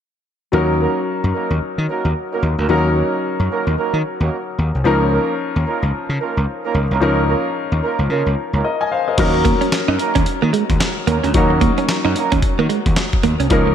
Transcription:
0.52 slap bass D#2, grand piano F#3 C#4 D#4 A#4, horn section A#3 C#4 D#4 F#4 A#4
0.80 horn section A#3 C#4 D#4 F#4 A#4
1.24 slap bass F#2
1.34 horn section A#3 C#4 D#4 F#4 A#4
1.50 slap bass D#2
1.61 muted slap bass stroke
1.78 slap bass D#3
1.88 horn section A#3 C#4 D#4 F#4 A#4
2.05 slap bass D#2
2.32 horn section A#3 C#4 D#4 F#4 A#4
2.42 slap bass D#2
2.58 slap bass D2, horn section A#3 C#4 D#4 F#4 A#4
2.68 slap bass D#2, grand piano F#3 C#4 D#4 A#4, horn section A#3 C#4 D#4 F#4 A#4
2.96 horn section A#3 C#4 D#4 F#4 A#4
3.40 slap bass F#2
3.50 horn section A#3 C#4 D#4 F#4 A#4
3.67 slap bass D#2
3.77 horn section A#3 C#4 D#4 F#4 A#4
3.93 slap bass D#3
4.20 slap bass D#2, horn section A#3 C#4 D#4 F#4 A#4
4.58 slap bass D#2
4.75 slap bass C2
4.84 slap bass C#2, grand piano F3 C#4 D#4 A#4, horn section A#3 C#4 D#4 F4 A#4
5.12 horn section A#3 C#4 D#4 F4 A#4
5.56 slap bass D#2
5.66 horn section A#3 C#4 D#4 F4 A#4
5.82 slap bass C#2
5.93 muted slap bass stroke
6.09 slap bass C#3
6.20 horn section A#3 C#4 D#4 F4 A#4
6.37 slap bass C#2
6.64 horn section A#3 C#4 D#4 F4 A#4
6.74 slap bass C#2
6.91 slap bass C2, horn section A#3 C#4 D#4 F4 A#4
7.00 slap bass C#2, grand piano F3 C#4 D#4 A#4, horn section A#3 C#4 D#4 F4 A#4
7.29 horn section A#3 C#4 D#4 F4 A#4
7.72 slap bass D#2
7.83 horn section A#3 C#4 D#4 F4 A#4
7.99 slap bass C#2
8.10 slap bass C#3, horn section A#3 C#4 D#4 F4 A#4
8.26 slap bass C#2
8.53 slap bass C#2, horn section A#3 C#4 D#4 F4 A#4
8.64 grand piano A#4 D#5
8.81 grand piano D#5 G#5
8.92 grand piano C5 F5
9.08 grand piano A#4 D#5
9.17 slap bass D#2, grand piano F#3 C#4 D#4 A#4, horn section A#3 C#4 D#4 F#4 A#4, kick, closed hi-hat, crash
9.34 muted clean electric guitar stroke
9.45 clean electric guitar A#3, kick, closed hi-hat
9.61 clean electric guitar C#4, closed hi-hat
9.72 snare, clap, closed hi-hat
9.88 slap bass F#2, clean electric guitar D#4
9.99 horn section A#3 C#4 D#4 F#4 A#4, muted clean electric guitar stroke, closed hi-hat
10.15 slap bass D#2, clean electric guitar C#4, kick, closed hi-hat
10.26 muted slap bass stroke, muted clean electric guitar stroke, closed hi-hat
10.42 slap bass D#3, clean electric guitar A#3
10.53 clean electric guitar G#3, closed hi-hat
10.69 slap bass D#2, kick, closed hi-hat
10.80 muted clean electric guitar stroke, snare, clap, closed hi-hat
11.07 slap bass D#2, clean electric guitar A#3, horn section A#3 C#4 D#4 F#4 A#4, closed hi-hat
11.24 slap bass D2, clean electric guitar C#4, closed hi-hat
11.34 slap bass D#2, grand piano F#3 C#4 D#4 F#4, horn section A#3 C#4 D#4 F#4 A#4, kick, closed hi-hat
11.50 muted clean electric guitar stroke
11.61 clean electric guitar A#3, kick, closed hi-hat
11.78 clean electric guitar C#4, closed hi-hat
11.89 snare, clap, closed hi-hat
12.05 slap bass F#2, clean electric guitar D#4
12.16 horn section A#3 C#4 D#4 F#4 A#4, muted clean electric guitar stroke, closed hi-hat
12.32 slap bass D#2, clean electric guitar C#4, kick, closed hi-hat
12.42 muted slap bass stroke, muted clean electric guitar stroke, kick, closed hi-hat
12.59 slap bass D#3, clean electric guitar A#3
12.69 clean electric guitar G#3, closed hi-hat
12.86 slap bass D#2, kick, closed hi-hat
12.96 muted clean electric guitar stroke, snare, clap, closed hi-hat
13.13 kick
13.23 slap bass D#2, clean electric guitar A#3, closed hi-hat
13.40 slap bass C2, clean electric guitar C#4, closed hi-hat
13.50 slap bass C#2, grand piano F3 C#4 D#4 A#4, horn section A#3 C#4 D#4 F4 A#4, kick, closed hi-hat
13.67 muted clean electric guitar stroke

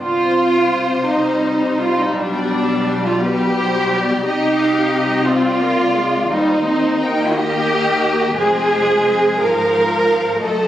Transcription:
0.00 double bass section C2, cello section C3, violin section F4 C5
1.08 viola section G3, violin section D#4
1.80 violin section F4
2.00 violin section D#4
2.16 double bass section B1, cello section B2, violin section D4 D5
3.06 violin section F4
3.22 violin section G4 B4
3.59 violin section C5
3.92 violin section D5
4.25 double bass section C2, cello section C3, viola section D#4, violin section G4 D#5
4.60 violin section F5
4.95 violin section D#5
5.27 viola section C4, violin section F4 D5
5.62 viola section A#3
5.96 viola section G#3
6.31 double bass section D#2, cello section D#2, viola section G3, violin section D#4 C5
6.66 viola section C4, violin section C5
6.99 viola section A#3, violin section G5
7.34 violin section G4 D#5
8.36 double bass section F1, cello section F2, viola section G#3, violin section G#4 C5
9.38 double bass section G#1, cello section G#2, viola section F3, violin section A#4 F5
10.41 double bass section F#1, cello section F#2, viola section A3, violin section A4 D#5

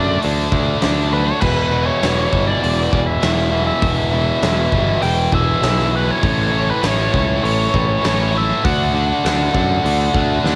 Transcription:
Already playing: picked electric bass F#2, distorted electric guitar D3 A3 D4, lead electric guitar D5
0.20 distorted electric guitar D3 A3 D4, open hi-hat
0.25 picked electric bass D2, distorted electric guitar A3
0.52 picked electric bass D2, distorted electric guitar D3 A3 D4, kick
0.81 picked electric bass D2, distorted electric guitar D3 A3 D4, snare, open hi-hat
1.12 distorted electric guitar D3 A3 D4, lead electric guitar B4
1.26 lead electric guitar C#5
1.41 picked electric bass E1, distorted electric guitar E2 B2 E3, lead electric guitar B4, kick, crash
1.72 distorted electric guitar E2 B2 E3
1.86 lead electric guitar C#5
2.02 picked electric bass E1, distorted electric guitar E2 B2 E3, snare, open hi-hat
2.32 picked electric bass G1, distorted electric guitar E2 B2 E3, kick
2.47 lead electric guitar D5
2.62 picked electric bass E1, distorted electric guitar E2 B2 E3, open hi-hat
2.92 picked electric bass E1, distorted electric guitar E2 B2 E3, kick
3.07 lead electric guitar E5
3.22 picked electric bass E1, distorted electric guitar E2 B2 E3, snare, open hi-hat
3.39 snare
3.53 distorted electric guitar E2 B2 E3
3.67 lead electric guitar E5
3.82 picked electric bass E1, distorted electric guitar E2 B2 E3, kick, open hi-hat
4.13 distorted electric guitar E2 B2 E3
4.42 picked electric bass E1, distorted electric guitar E2 B2 E3, snare, open hi-hat
4.72 picked electric bass G1, distorted electric guitar E2 B2 E3, kick
5.02 picked electric bass E1, distorted electric guitar E2 B2 E3, lead electric guitar G5, open hi-hat
5.32 picked electric bass E1, distorted electric guitar E2 B2 E3, lead electric guitar E5, kick
5.61 picked electric bass B1, distorted electric guitar E2 B2 E3, snare, open hi-hat
5.80 snare
5.91 distorted electric guitar E2 B2 E3
5.96 lead electric guitar B4
6.11 lead electric guitar C#5
6.22 picked electric bass A1, distorted electric guitar A2 E3 A3, kick, open hi-hat
6.52 distorted electric guitar A2 E3 A3
6.71 lead electric guitar B4
6.82 picked electric bass A1, distorted electric guitar A2 E3 A3, lead electric guitar C#5, snare, open hi-hat
7.13 picked electric bass C#2, distorted electric guitar A2 E3 A3, kick
7.43 picked electric bass A1, distorted electric guitar A2 E3 A3, lead electric guitar C#5, open hi-hat
7.74 picked electric bass A1, distorted electric guitar A2 E3 A3, kick
8.03 picked electric bass A1, distorted electric guitar A2 E3 A3, lead electric guitar C#5, snare, open hi-hat
8.34 distorted electric guitar A2 E3 A3, lead electric guitar E5
8.65 picked electric bass D2, distorted electric guitar D3 A3 D4, lead electric guitar F#5, kick, open hi-hat
8.94 distorted electric guitar D3 A3 D4
9.24 picked electric bass D2, distorted electric guitar D3 A3 D4, snare, open hi-hat
9.53 picked electric bass F#2, distorted electric guitar D3 A3 D4, kick
9.83 picked electric bass D2, distorted electric guitar D3 A3 D4, open hi-hat
10.14 picked electric bass D2, distorted electric guitar D3 A3 D4, kick
10.44 picked electric bass D#2, distorted electric guitar D3 A3 D4, snare

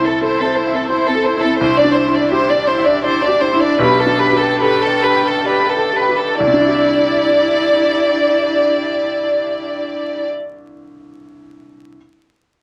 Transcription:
Already playing: grand piano C2 C4, string section E4 A4 E5
0.00 grand piano E4
0.06 viola C4, violin section A4
0.21 viola E4, grand piano A4, violin section C5
0.39 viola C4, violin section A4
0.45 grand piano C5
0.55 viola E4, violin section C5
0.67 grand piano E5
0.73 viola C4, violin section A4
0.88 viola E4, violin section C5, grand piano C5
1.06 viola C4, violin section A4
1.15 grand piano A4
1.24 viola E4, violin section C5
1.37 grand piano E4, violin section A4
1.44 viola C4
1.58 grand piano C2, string section D4 G4, violin section C5
1.62 viola E4
1.76 viola D4, violin section D5
1.84 grand piano D4
1.92 viola E4, violin section C5
2.07 grand piano E4
2.13 viola D4, violin section D5
2.31 viola E4, grand piano G4, violin section C5
2.48 viola D4, violin section D5
2.54 grand piano D5
2.66 viola E4, violin section C5
2.78 grand piano E5
2.85 viola D4, violin section D5
3.03 viola E4, violin section C5, grand piano D5
3.22 viola D4, violin section D5
3.28 grand piano G4
3.40 viola E4, violin section C5
3.53 grand piano E4
3.59 viola D4, violin section D5
3.78 grand piano B1, viola G4, string section A4 G5, violin section B4
3.98 violin section A4, viola B4
4.06 grand piano D4
4.18 viola G4, violin section B4
4.33 grand piano G4
4.38 violin section A4, viola B4
4.60 viola G4, grand piano A4, violin section B4
4.81 violin section A4, viola B4
4.87 grand piano D5
5.02 viola G4, violin section B4
5.16 grand piano G5
5.22 violin section A4, viola B4
5.45 viola G4, violin section B4, grand piano D5
5.67 violin section A4, viola B4
5.77 grand piano A4
5.91 viola G4, violin section B4
6.09 grand piano G4
6.15 violin section A4, viola B4
6.39 grand piano C2, string section D4 G4 E5, viola E4, violin section D5
6.47 grand piano C3
6.54 grand piano D4
6.61 grand piano E4
6.68 grand piano G4
6.74 grand piano E5

